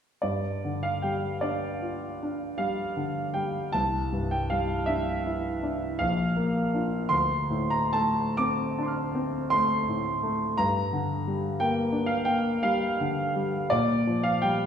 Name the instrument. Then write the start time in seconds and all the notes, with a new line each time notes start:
grand piano
0.22 G2 D5
0.65 D3
0.83 F5
1.02 G3 G5
1.41 D4 D5
1.81 F4
2.23 D4
2.58 G3 F5
2.97 D3
3.34 G3 G5
3.73 C2 A5
4.12 G2
4.31 G5
4.50 G3 F5
4.86 D4 E5
5.26 E4
5.63 D4
5.99 A#1 F5
6.36 A#3
6.74 D4 F4
7.09 D2 C6
7.50 A2
7.70 A#5
7.93 A3 A5
8.37 C4 D6
8.78 D4 A5 C6
8.85 D6 F6
9.15 C4
9.50 A3 C6
9.88 A2
10.23 A3
10.58 G2 A#5
10.93 D3
11.27 G3
11.60 A#3 G5
11.92 D4
12.06 F5
12.25 A#3 G5
12.63 G3 F5
13.00 D3
13.36 G3
13.70 A#2 D5
14.07 F3
14.23 F5
14.42 G3 G5